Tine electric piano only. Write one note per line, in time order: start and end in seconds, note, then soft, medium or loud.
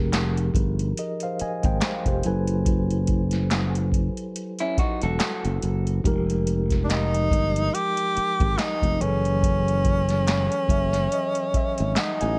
0.00 2.20 F3 medium
0.00 2.20 D#4 medium
0.00 0.95 G4 medium
0.00 0.95 G#4 medium
0.00 0.95 A#4 medium
0.99 1.21 A#4 soft
0.99 1.21 D#5 medium
1.23 1.40 C5 medium
1.23 1.39 F5 medium
1.41 1.64 D#5 medium
1.41 1.63 G#5 medium
1.65 1.82 C5 medium
1.65 1.82 G5 medium
1.83 2.06 C5 medium
1.83 2.05 F5 medium
2.08 2.47 G4 soft
2.08 2.47 C5 medium
2.24 5.58 F#3 medium
2.24 5.58 E4 medium
2.24 5.59 A4 medium
2.24 5.59 B4 medium
2.24 5.59 G#5 medium
6.04 8.96 F3 medium
6.04 8.97 G#3 medium
6.04 8.96 D#4 medium
6.04 8.96 G4 medium
6.04 8.97 A#4 medium
9.00 12.34 E3 medium
9.00 12.34 F#3 medium
9.00 12.34 G#4 medium
9.00 12.35 A4 medium
9.00 12.35 B4 medium
10.71 11.09 E5 medium
11.13 11.52 D#5 medium
11.56 11.94 E5 medium
11.98 12.19 F#5 medium
12.21 12.37 G#5 medium